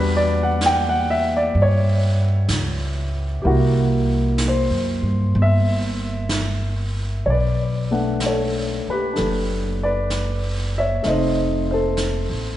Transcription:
Already playing: upright bass E2, grand piano G3 B3 D4 F#4 G4 B4
0.17 grand piano D5
0.43 grand piano F#5
0.61 brush sweep, snare, hi-hat pedal
0.66 grand piano G5
0.89 grand piano F#5
1.10 grand piano E5
1.37 grand piano D5
1.55 upright bass G2, brush sweep
1.62 grand piano C#5
2.49 upright bass C#2, brush sweep, snare, hi-hat pedal
3.42 upright bass C2, grand piano A#3 E4 G4, brush sweep
3.47 grand piano F#4
4.38 brush sweep, snare, hi-hat pedal
4.48 grand piano C5
4.70 upright bass F#2
5.03 upright bass G2
5.34 upright bass G1, brush sweep
5.42 grand piano E5
6.29 brush sweep, snare, hi-hat pedal
7.26 upright bass B1, grand piano C#5, brush sweep
7.30 grand piano B4 D5
7.91 grand piano A3 B3 D4 F#5
8.20 brush sweep, snare, hi-hat pedal
8.26 grand piano A4 C#5
8.88 grand piano G4 B4, muted upright bass stroke
9.13 grand piano D4 A4, brush sweep, snare
9.18 upright bass F#1
9.83 grand piano B4 D5
10.10 brush sweep, snare, hi-hat pedal
10.78 grand piano C#5 E5
11.03 upright bass F1, grand piano A3 C4 D#4 D#5, brush sweep, snare
11.09 grand piano C5
11.71 grand piano A4 C5
11.97 brush sweep, snare, hi-hat pedal
12.30 upright bass A1

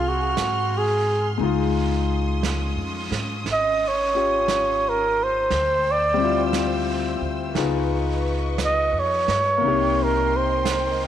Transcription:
Already playing: upright bass C2, grand piano F#3 A#3 C4 D#4 F5, string section G#4 G#5 C6 F6
0.08 flugelhorn F#4
0.37 upright bass G#2, brush sweep, snare, hi-hat pedal
0.78 flugelhorn G#4
1.38 upright bass C#2, grand piano G#3 D#4, string section C#4 D#6, brush sweep
1.43 grand piano F4
2.43 brush sweep, snare, hi-hat pedal
2.76 upright bass F2
3.11 upright bass G#2, snare
3.45 upright bass G#1, brush sweep, snare
3.52 flugelhorn D#5
3.88 flugelhorn C#5
4.14 grand piano C#4 F4 G4
4.48 brush sweep, snare, hi-hat pedal
4.89 flugelhorn A#4
5.24 flugelhorn C5
5.49 upright bass D2, string section C5 G5 E6, brush sweep, snare
5.91 flugelhorn D5
6.14 grand piano G3 C4
6.20 grand piano E4 F4
6.53 brush sweep, snare, hi-hat pedal
7.21 upright bass D2
7.52 upright bass C#2, string section B4 D#5 C#6, brush sweep, snare
7.56 grand piano B3 D#4 F4 G#4
8.58 brush sweep, snare, hi-hat pedal
8.65 flugelhorn D#5
8.92 upright bass F2
8.99 flugelhorn C#5
9.28 upright bass G2, snare
9.57 grand piano C3 A#3, string section A#4 D#5 G5 C6
9.62 upright bass C2, grand piano D#4, brush sweep
9.68 grand piano G4
10.03 flugelhorn A#4
10.37 flugelhorn C5
10.65 brush sweep, snare, hi-hat pedal

